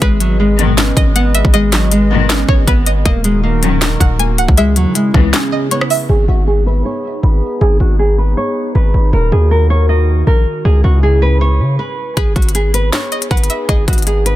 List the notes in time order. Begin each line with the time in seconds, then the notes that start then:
Already playing: G#4
0.02 G#1 G#3 B4 D#5, kick, closed hi-hat
0.20 F#3, closed hi-hat
0.40 G#3
0.59 B1 G#2 D#3 B3, closed hi-hat
0.78 C#4, snare, clap, closed hi-hat
0.97 G#1 D#5, kick, closed hi-hat
1.16 B3 F#5, closed hi-hat
1.35 E5, closed hi-hat
1.45 G#1, kick
1.54 G#3 D#5, closed hi-hat
1.72 F#3, snare, clap, closed hi-hat
1.92 G#3, closed hi-hat
2.11 B1 G#2 D#3 B3
2.30 C#4, snare, clap, closed hi-hat
2.49 G#1 C#5, kick
2.68 G#1 B3 B4, kick, closed hi-hat
2.86 D#5, closed hi-hat
3.05 D#1 D#3 A#3 D#4 F#4 A#4 D#5, kick, closed hi-hat
3.24 G#3, closed hi-hat
3.43 A#3
3.62 A#1 F#2 D#3 C#4, closed hi-hat
3.81 D#4, snare, clap, closed hi-hat
4.00 D#1 F#5, kick, closed hi-hat
4.19 A#3 G#5, closed hi-hat
4.38 C#1 F#5, closed hi-hat
4.48 C#2, kick
4.57 C#3 G#3 C#4 E4 G#4 E5, closed hi-hat
4.76 D#2 F#3, closed hi-hat
4.95 G#3, closed hi-hat
5.14 C#2 G#2 E3 B3, kick
5.33 C#4, snare, clap, closed hi-hat
5.52 D#5
5.71 B3 C#5, closed hi-hat
5.81 cross-stick
5.90 E5, open hi-hat
6.09 G#1 B3 D#4 G#4
6.28 G#1 F#4
6.47 G#4
6.66 B4
6.85 C#5
7.23 G#1 B4
7.61 G#1 G#4
7.80 G#1 F#4
7.99 G#4
8.18 B4
8.37 C#5
8.75 G#1 B4
8.94 G#1
9.13 D#1 D#3 F#4 A#4
9.32 D#2 G#4
9.51 A#4
9.70 C#5
9.89 D#5
10.27 A#1 A#4
10.65 C#2 C#3 C#4 E4 G#4
10.84 C#2 F#4
11.03 G#4
11.22 B4
11.41 C#5
11.60 C#3
11.79 B4
12.17 G#1 B3 D#4 G#4 B4, kick, closed hi-hat
12.36 G#1 F#4, kick, closed hi-hat
12.42 closed hi-hat
12.49 closed hi-hat
12.55 G#4, closed hi-hat
12.74 B4, closed hi-hat
12.93 C#5, snare, clap, closed hi-hat
13.12 D#5, closed hi-hat
13.22 closed hi-hat
13.31 G#1 B4 F#5, kick, closed hi-hat
13.37 closed hi-hat
13.44 closed hi-hat
13.50 E5, closed hi-hat
13.69 G#1 G#4 D#5, kick, closed hi-hat
13.88 G#1 F#4, kick, closed hi-hat
13.93 closed hi-hat
13.98 closed hi-hat
14.02 closed hi-hat
14.07 G#4, closed hi-hat
14.26 B4, closed hi-hat